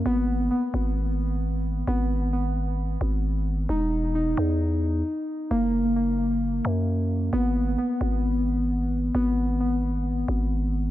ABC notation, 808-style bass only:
X:1
M:4/4
L:1/8
Q:1/4=132
K:G#m
V:1 name="808-style bass" clef=bass
G,,,2 z G,,,4- G,,, | G,,,4- G,,, G,,,3 | E,,,3 E,,3 z2 | F,,,4- F,,, F,,3 |
G,,,2 z G,,,4- G,,, | G,,,4- G,,, G,,,3 |]